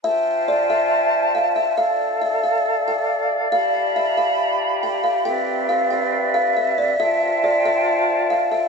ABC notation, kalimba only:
X:1
M:4/4
L:1/8
Q:1/4=138
K:Flyd
V:1 name="Kalimba"
e2 d e3 f e | f2 e f2 g3 | f2 e f3 g f | g2 f g2 f e d |
e2 d e3 f e |]